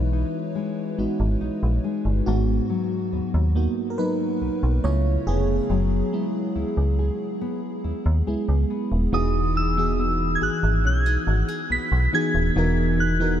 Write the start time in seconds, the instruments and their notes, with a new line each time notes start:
Already playing: fm bass B1, nylon-string guitar E3 G#3 B3 D#4, fm electric piano G#3 D#4 E4 F#4 B4
0.13 nylon-string guitar D#4
0.55 nylon-string guitar G#3
0.98 fm bass G#1, fm electric piano G#3 D#4 F#4, nylon-string guitar B3
1.20 fm bass G#1
1.41 fm bass A#1, nylon-string guitar D#4
1.63 fm bass A#1
1.84 nylon-string guitar G#3
2.05 fm bass G1
2.26 fm bass G#1, nylon-string guitar G#2, fm electric piano B3 F#4
2.70 nylon-string guitar F#3
3.13 fm bass D#2, nylon-string guitar B3
3.34 fm bass D#2
3.55 fm electric piano A#3 B3 F#4, nylon-string guitar D#4
3.90 fm electric piano A#4
3.98 nylon-string guitar F#3, fm electric piano D#4 B4
4.41 fm bass B1, nylon-string guitar B3
4.63 fm bass B1
4.84 fm bass C#2, nylon-string guitar C#3, fm electric piano A3 B3 E4 F4 C#5
5.27 fm bass F1, nylon-string guitar A3, fm electric piano B3 G#4
5.70 fm bass F#1, nylon-string guitar F#3
6.13 fm electric piano G#3 B3 E4, nylon-string guitar B3
6.56 fm bass C#2, nylon-string guitar E4
6.77 fm bass C#2
6.99 nylon-string guitar G#4
7.41 nylon-string guitar B3
7.84 fm bass D#2, nylon-string guitar E4
8.06 fm bass D#2
8.27 fm bass C#2, fm electric piano G#3 B3 E4, nylon-string guitar G#4
8.49 fm bass C#2
8.70 nylon-string guitar B3
8.92 fm bass D#1
9.12 fm bass E1, fm electric piano E3 B3 D#4 F#4 G#4, nylon-string guitar E3, synth bell D#6
9.56 nylon-string guitar D#4, synth bell E6
9.77 fm electric piano E3 B3 D#4 F#4 G#4
9.99 nylon-string guitar B3
10.35 synth bell G#6
10.41 fm bass G#1, nylon-string guitar G#4, synth bell F#6
10.63 fm bass G#1
10.84 fm bass B1, nylon-string guitar C#4, synth bell G#6
11.06 nylon-string guitar D#4
11.27 fm bass G#1, nylon-string guitar F#4
11.48 nylon-string guitar G#4
11.70 fm bass B1, nylon-string guitar B3, synth bell B6
11.92 fm bass B1
12.13 fm electric piano E3 B3 D#4 F#4 G#4, nylon-string guitar D#4, synth bell G#6
12.35 fm bass D#1
12.56 fm bass E1, nylon-string guitar E3, fm electric piano E3 B3 D#4 F#4 A#4
12.98 nylon-string guitar D#4, synth bell F#6
13.20 fm electric piano E3 B3 D#4 F#4 A#4